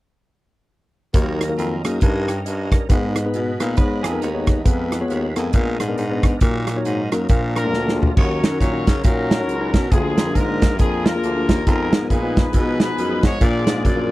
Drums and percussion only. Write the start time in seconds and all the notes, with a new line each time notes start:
1.14 kick, closed hi-hat
1.41 cross-stick, closed hi-hat
1.58 closed hi-hat
1.84 cross-stick, closed hi-hat
2.01 kick, closed hi-hat
2.28 cross-stick, closed hi-hat
2.46 closed hi-hat
2.72 kick, cross-stick, closed hi-hat
2.90 kick, closed hi-hat
3.16 cross-stick, closed hi-hat
3.34 closed hi-hat
3.60 cross-stick, closed hi-hat
3.77 kick, closed hi-hat
4.04 cross-stick, closed hi-hat
4.22 closed hi-hat
4.47 kick, cross-stick, closed hi-hat
4.65 kick, closed hi-hat
4.92 cross-stick, closed hi-hat
5.10 closed hi-hat
5.36 cross-stick, closed hi-hat
5.53 kick, closed hi-hat
5.80 cross-stick, closed hi-hat
5.98 closed hi-hat
6.23 kick, cross-stick, closed hi-hat
6.40 kick, closed hi-hat
6.67 cross-stick, closed hi-hat
6.85 closed hi-hat
7.12 cross-stick, closed hi-hat
7.29 kick, closed hi-hat
7.56 cross-stick, closed hi-hat
7.73 snare
7.88 snare
8.03 floor tom
8.17 kick, crash
8.44 snare, closed hi-hat
8.61 kick, closed hi-hat
8.87 kick, snare, closed hi-hat
9.04 kick, closed hi-hat
9.31 snare, closed hi-hat
9.49 closed hi-hat
9.74 kick, snare, closed hi-hat
9.92 kick, closed hi-hat
10.18 snare, closed hi-hat
10.35 kick, closed hi-hat
10.62 kick, snare, closed hi-hat
10.79 kick, closed hi-hat
11.06 snare, closed hi-hat
11.23 closed hi-hat
11.49 kick, snare, closed hi-hat
11.67 kick, closed hi-hat
11.93 snare, closed hi-hat
12.10 kick, closed hi-hat
12.37 kick, snare, closed hi-hat
12.53 kick, closed hi-hat
12.80 snare, closed hi-hat
12.98 closed hi-hat
13.23 kick, snare, closed hi-hat
13.41 kick, closed hi-hat
13.67 snare, closed hi-hat
13.85 kick, closed hi-hat